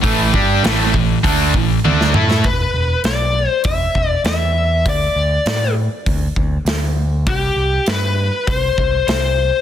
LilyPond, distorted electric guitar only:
\new Staff \with { instrumentName = "Distorted electric guitar" } { \clef bass \time 4/4 \key e \minor \tempo 4 = 99 <a, e a>8 <g d' g'>8 <a, e a>8 <a, e>8 <d a d'>8 <a, e>8 <d a d'>8 <a e' a'>8 | r1 | r1 | r1 | }